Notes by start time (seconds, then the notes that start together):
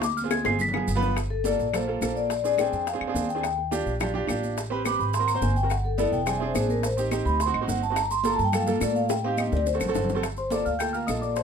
Already playing: D2
0.02 D6, high bongo, high conga, maracas
0.17 F6, high bongo, maracas
0.21 C4 F4 G#4, high conga
0.31 G#6, high bongo, high conga, claves, maracas
0.44 G1 C4 F4 G#4 C7, high bongo, maracas
0.50 high conga
0.59 B6, low conga, maracas
0.68 low conga
0.73 B3 F4 G#4, low bongo, claves
0.77 low conga
0.87 G1, low conga, maracas
0.95 B3 F4 B4, low conga
1.02 low bongo, low conga, maracas
1.16 high bongo, high conga, claves, maracas
1.30 A4, high bongo, high conga
1.44 A#3 F4 A4 D5, high bongo, high conga, maracas
1.59 A#1, high bongo, maracas
1.73 A#3 F4 A4 C5, high bongo, high conga, low conga, claves, maracas
1.87 A#3 F4 A4, high conga
2.01 A#1 A#3 F4 A4, high bongo, low bongo, high conga, claves, maracas
2.16 D5, maracas
2.29 high bongo, high conga, maracas
2.44 C4 D4 G#4 D5, high bongo, high conga, maracas
2.58 C4 D4 G#4 G5, high bongo, high conga, claves, maracas
2.72 F2, high bongo, high conga, maracas
2.86 F5, high bongo, high conga, maracas
2.94 C4 D4 G#4
3.00 F2, high conga, claves
3.07 C4 D4 G#4
3.14 D#2, high bongo, low bongo, high conga, maracas
3.29 G5, high conga, maracas
3.35 C4 D4 G#4
3.43 high bongo, high conga, claves, maracas
3.58 high bongo, high conga
3.71 D4 F4 G4, high bongo, high conga, maracas
3.86 A#1, high bongo, high conga, maracas
4.00 D4 F4 G4, high bongo, high conga, low conga, claves, maracas
4.14 D4 F4 G4, high conga, low conga
4.27 A1 D4 F4 G4, high bongo, low bongo, high conga, claves, maracas
4.43 high conga, maracas
4.57 high bongo, high conga, maracas
4.70 C4 G4 B4, high bongo, high conga
4.85 C4 G4 B4 D6, high bongo, high conga, claves, maracas
4.99 G#1 B5, high bongo, high conga, maracas
5.14 C6, high bongo, high conga, maracas
5.19 C4 F#4 A#4
5.27 A#5, high conga, claves, maracas
5.34 C4 F#4 C5
5.42 G1 G#5, high bongo, low bongo, high conga, maracas
5.56 G5, high conga, maracas
5.63 C4 F#4 A#4
5.70 F#5, high bongo, high conga, claves, maracas
5.84 A4, high bongo, high conga
5.98 B3 E4 A4 D5, high bongo, high conga, maracas
6.12 E1 G5, high bongo, high conga, maracas
6.26 C4 D4 G#4 G#5, high bongo, high conga, low conga, claves, maracas
6.37 C4 E5
6.41 D4 G#4
6.46 C5
6.55 A1 C4 D4 G#4, high bongo, low bongo, high conga, claves, maracas
6.70 A#4, high conga, maracas
6.83 C5, high bongo, high conga, maracas
6.97 C4 D#4 G4, high bongo, high conga, maracas
7.11 C4 D#4 G4, high bongo, high conga, claves, maracas
7.25 D2 B5, high bongo, high conga, maracas
7.40 C6, high bongo, high conga, maracas
7.46 C4 D#4 F#4
7.53 A1 D#5, high conga, claves
7.61 C4 D#4 F#4
7.68 G1 F#5, high bongo, low bongo, high conga, maracas
7.81 A5, high conga, maracas
7.90 C4 D#4 F#4
7.96 A#5, high bongo, high conga, claves, maracas
8.10 C6, high bongo, high conga, maracas
8.24 A#3 F4 A4 A#5, high bongo, high conga, maracas
8.34 A5, high conga
8.39 G2, high bongo, maracas
8.44 G5
8.52 A#3 F4 A4 F5, high bongo, high conga, low conga, claves, maracas
8.67 A#3 F4 A4, high conga, low conga, maracas
8.80 A2 A#3 F4 A4 D5, high bongo, low bongo, high conga, claves, maracas
8.96 F5, maracas
9.09 G5, high bongo, high conga, maracas
9.24 C4 D#4 G4 F5, high conga
9.38 C4 D#4 G4 D#5, high conga, claves, maracas
9.47 high conga
9.52 D2 D5, low bongo, maracas
9.57 high conga
9.66 C5, low bongo, maracas
9.74 C4 F#4 A4
9.80 A1, low bongo, claves, maracas
9.84 C4, low conga
9.89 F#4 A4
9.95 G1, low bongo, maracas
10.04 low conga
10.09 low bongo, low conga, maracas
10.15 C4 F#4 A4
10.23 high bongo, high conga, claves, maracas
10.37 C5 C6, high bongo, high conga, maracas
10.50 A#3 F4 A4 D5 D6, high bongo, high conga, maracas
10.65 D2 F5 F6, maracas
10.79 A#3 F4 A4 G5 G6, high bongo, high conga, claves, maracas
10.93 A#3 F4 A#4 F5 F6, high bongo, high conga, maracas
11.07 A#1 A#3 F4 A4 D#5 D#6, high bongo, low bongo, high conga, claves, maracas
11.21 D5 D6, high bongo, high conga, maracas
11.36 C5 C6, high bongo, high conga, maracas